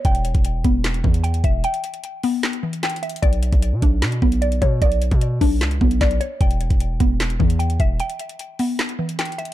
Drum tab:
HH |x--x--x--x--x-----x-----x--x-----x--x--x--x-----|x--x--x--x--x-----o-----x--x-----x--x-x-x-x-x-x-|x--x--x--x--x-----x-----x--x-----x--x--x--x-----|x--x--x--x--x-----o-----x--x-----x--x--x--x-----|
CP |------------------------x-----------------------|------------------------x-----------x-----------|------------------------x-----------------------|------------------------x-----------x-----------|
SD |------------------------o-----------------------|------------------------o-----------o-----------|------------------------o-----------------------|------------------------o-----------o-----------|
BD |o--------o--------o-----------o-----------o-----|------------------------------------------------|o--------o--------o-----------o-----------o-----|o--------o--------o-----------o-----o-----------|

HH |x--x--x--x--x-----x-----x--x-----x--x--x--x-----|x--x--x--x--x-----o-----x--x-----x--x-x-x-x-x---|
CP |------------------------x-----------------------|------------------------x-----------x-----------|
SD |------------------------o-----------------------|------------------------o-----------o-----------|
BD |o--------o--------o-----------o-----------o-----|------------------------------------------------|